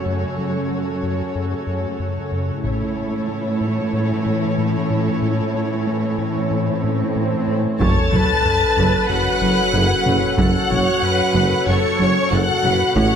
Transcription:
Already playing: F#2 C#3 A3 C#4 F#4 A4 C#5
0.06 F#2
0.38 F#3
0.71 F#3
1.03 F#2
1.35 F#2
1.67 F#2
2.00 F#2
2.32 F#2
2.63 A2 E3 A3 C#4 E4 A4 C#5, taiko
2.96 A3
3.29 A3
3.61 A2
3.93 A2
4.26 A2
4.58 A2
4.90 A2
5.22 A2, swell
5.55 A3
5.87 A3
6.18 A2
6.51 A2
6.84 A2
7.16 A2
7.48 A2
7.80 F#1 F#2 F#3 C#4 A4 C#5 A5 A6, taiko, sub drop
8.12 F#1 F#2 F#3 B4, taiko mid
8.45 F#2
8.77 F#1 F#2
9.09 F#1 F#2 F#4 F#5 F#6
9.41 F#1 F#2 F#3
9.74 F#1 F#2
10.06 F#1 F#2, taiko mid
10.38 F#1 F#2 F#4 A4 F#5 F#6, taiko
10.70 F#1 F#2 F#3 C#5, taiko mid
11.02 F#2 B4
11.34 F#1 F#2
11.67 F#1 F#2 C#4 A4 C#5 C#6
11.99 F#1 F#2 F#3 C#5
12.31 F#1 F#2 F#4 A4 F#5 F#6
12.63 F#1 F#2 B4, taiko mid
12.95 A1 A2 E3 C#4 F#4 A4 C#5 F#5 F#6, taiko

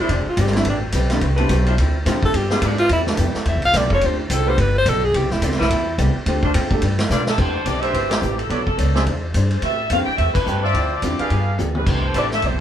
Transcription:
0.00 G#3 D4 E4 C5
0.09 E1 E3 C4 D4 G#4, kick, ride
0.26 F4, muted upright bass stroke
0.37 G1 E3 C4 D4 G#4, kick, hi-hat pedal, ride
0.41 G4
0.47 snare
0.53 D3 G3 C4 E4, snare, ride
0.57 E4
0.65 A1 A3 C4 G4 B4, kick, ride
0.70 D4
0.92 B1 A3 C4 G4 B4, kick, hi-hat pedal, ride
1.10 D3 G3 C4 E4, snare, ride
1.21 C2 A3 C4 G4 B4, kick, ride
1.37 D3 G3 A3 C4 E4 G4 B4, ride
1.49 B1 A3 C4 G4 B4, kick, hi-hat pedal, ride
1.66 F3 D4 E4 C5, ride
1.78 D2 D3 F3 C4 E4, kick, ride
2.05 A2 D3 F3 G3 C4 E4 F4, kick, snare, hi-hat pedal, ride
2.23 A4, kick
2.34 G2 G3 B3 F4 G4 G#4, kick, ride
2.50 G3 G#3 B3 D4 F4 G4 G#4, snare
2.62 G#2 G3 B3 D4 F4 G#4, kick, hi-hat pedal, ride
2.78 G3 C4 E4 F4 B4, ride
2.89 E2 C3 G3 B3 E4, kick, ride
3.07 A3 D4 G4 B4, snare
3.17 F2 C3 G3 B3 E4, kick, hi-hat pedal, ride
3.34 muted upright bass stroke, snare
3.46 E2 C3 G3 B3 E5, kick, ride
3.50 E4
3.55 C2
3.62 B1 F5, ride
3.73 B1 C3 G3 B3 E4, kick, snare, hi-hat pedal, ride
3.77 D5
3.83 G1
3.90 E1 F3 C4 D4 A4, kick
3.94 C#5
4.01 D2 D3 A3 C4 D4 F4 G4 A4 C5, kick, ride
4.06 C5
4.20 E4
4.30 C2 D3 C4 F4 A4, kick, hi-hat pedal, ride
4.46 G3 A3 B3 D4 F4 G4 A4 B4 C5
4.58 G1 G3 B3 F4 A4 B4, kick, ride
4.78 C5
4.86 B1 G3 B3 F4 A4, kick, hi-hat pedal, ride
5.05 G#4
5.14 C2 C3 G3 B3 E4 G4, kick, ride
5.23 B1
5.31 G1 E4, snare
5.41 D2 C3 G3 B3 C4 E4, kick, hi-hat pedal, ride
5.51 C2, snare
5.58 B1 G3 C4 E4 B4, snare
5.70 E2 C3 G3 B3 E4, kick, ride
5.98 C2 C3 G3 B3 E4, kick, hi-hat pedal, ride
6.15 muted upright bass stroke
6.26 D2 D3 A3 C4 D4 F4 G4 A4 C5, kick, ride
6.43 A3 D4 F4 C5, kick
6.54 A2 D3 C4 F4 A4, kick, hi-hat pedal, ride
6.71 A3 D4 G4 A4, kick
6.82 G2 G3 D4 F4 B4, kick, ride
6.99 snare, ride
7.10 B2 G3 D4 F4 B4 D5, snare, hi-hat pedal
7.27 A4, snare
7.37 E2 A3 C4 D4 E4 G4 B4 C5, kick, crash
7.65 B1 C4 E4 G4 B4 D5, kick, hi-hat pedal, ride
7.80 A3 D4 G4 B4 C5 E5, ride
7.93 G1 C4 E4 G4 B4 C5, kick, ride
8.10 G4, snare, ride
8.21 A1 C4 E4 G4 B4, hi-hat pedal
8.38 A4, ride
8.49 B1 F#3 B3 D4 E4 A4 B4 C#5 D5, kick, ride
8.66 A4, kick
8.78 C#2 B3 D4 A4 C#5, kick, hi-hat pedal, ride
8.95 D3 G3 C4 D4 G#4 C5 D5 E5, snare
9.06 E2 E3 D4 G#4 C5, kick, ride
9.34 G2 E3 D4 G#4 C5, kick, hi-hat pedal, ride
9.51 C5, ride
9.62 A2 A3 C4 G4 B4 E5, kick, ride
9.90 F2 D3 G3 A3 C4 G4 B4 F5, kick, hi-hat pedal, ride
9.94 E4
10.06 G5, muted upright bass stroke
10.17 E2 A3 C4 G4 B4 E5, kick, ride
10.34 B4, muted upright bass stroke, kick, crash
10.46 G2 A3 C4 G4 B4, hi-hat pedal
10.62 F4 C5 D5 E5
10.73 D2 D3 F3 C4 E4, kick, ride
10.84 C5
10.94 D5
11.02 E2 D3 F3 G3 C4 E4 F4, kick, hi-hat pedal, ride
11.19 G4 G#4 B4 F5, muted upright bass stroke, ride
11.30 G2 G3 B3 F4 G#4, kick, ride
11.58 D2 G3 B3 F4 G#4, hi-hat pedal, mid tom
11.75 A3 D4 G4 B4, mid tom
11.87 C2 C3 G3 B3 E4 C5, kick, crash
12.14 A1 C3 G3 A3 B3 D4 E4 G4 B4 C5 E5, kick, hi-hat pedal, ride
12.19 D5
12.31 E5, snare
12.42 B1 C3 G3 B3 E4 C5, kick, ride
12.52 G1

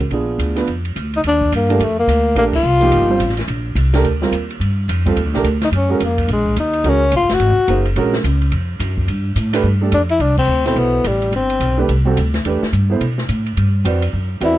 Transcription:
0.00 kick, ride
0.10 A#1 B3 D4 F4 G#4, ride
0.38 D2, hi-hat pedal, ride
0.56 B3 D4 F4 B4, snare, ride
0.67 F2, ride
0.85 ride
0.96 D2, hi-hat pedal, ride
1.13 D#4, ride
1.24 D#2, ride
1.28 D4
1.41 kick
1.52 G2 A#3, hi-hat pedal, ride
1.69 A3 D4 G4 A#4, ride
1.79 F2 A3, ride
1.99 A#3
2.07 D2, hi-hat pedal, ride
2.35 A#1 A3 A#3 D4 G4 A#4, ride
2.53 F4, kick, crash
2.63 C2, hi-hat pedal
2.80 F3 A#3 D#4 G4, ride
2.91 G1, ride
3.09 G3 C4 F4 C5
3.19 A1, hi-hat pedal, ride
3.29 snare
3.37 snare, ride
3.48 A#1, ride
3.75 C2, hi-hat pedal, ride
3.93 A3 D4 G4 A#4, snare, ride
4.03 D2, ride
4.22 G3 C4 F4 A#4, snare
4.31 D#2, hi-hat pedal, ride
4.50 ride
4.60 G2, ride
4.88 F2, hi-hat pedal, ride
5.06 G3 C4 F4 A4, kick, ride
5.16 D#2, ride
5.25 D2
5.34 A#1 A3 D4 G4 A#4, snare
5.43 D2, hi-hat pedal, ride
5.61 D#4, snare, ride
5.72 F#2, ride
5.76 C#4
5.89 G#3 C#4 F#4 A#4
6.00 F2, hi-hat pedal, ride
6.04 A#3
6.18 kick, ride
6.28 A#1, ride
6.33 G#3
6.46 kick
6.56 D#2 D#4, hi-hat pedal, ride
6.73 ride
6.84 C#2 G#3 C#4 F#4 A#4, ride
6.89 C#4
7.12 A#1, hi-hat pedal, ride
7.16 F4
7.21 F#1
7.29 F1, snare, ride
7.34 F#4
7.40 G#1, ride
7.57 muted upright bass stroke
7.68 F#1 A#3 D#4 G#4 C5, hi-hat pedal, ride
7.85 ride
7.96 A#1 G#3 C#4 F#4 A#4, ride
8.13 snare
8.24 C#2, hi-hat pedal, ride
8.41 ride
8.52 F2, ride
8.79 F#2, hi-hat pedal, ride
8.97 kick
9.07 G2, ride
9.36 A2, hi-hat pedal, ride
9.53 A3 D4 G4 B4, snare, ride
9.63 G2
9.81 A3 D4 G4 A4
9.92 F2 D4, hi-hat pedal, ride
10.09 E4, ride
10.19 C2 D4, ride
10.37 C4, kick, crash
10.47 D2, hi-hat pedal
10.65 B2 C4 E4 A4 C5, snare, ride
10.75 B1 B3, ride
11.04 A1 G3, hi-hat pedal, ride
11.22 ride
11.32 G1 C4, ride
11.50 ride
11.60 B1, hi-hat pedal, ride
11.78 A3 D4 G4 B4
11.89 C2, ride
12.05 G3 C4 F#4 A4
12.17 D2, hi-hat pedal, ride
12.34 snare, ride
12.45 E2 A3 D4 G4 B4, ride
12.62 muted upright bass stroke, snare
12.72 G2, hi-hat pedal, ride
12.90 B3 E4 A4 C5
13.00 B2, ride
13.18 snare
13.29 A2, hi-hat pedal, ride
13.46 ride
13.57 G2, ride
13.85 F2 C4 F#4 B4 D5, hi-hat pedal, ride
14.02 ride
14.13 F#2
14.41 E2 C4 F#4 B4 D5, hi-hat pedal, ride
14.45 E4

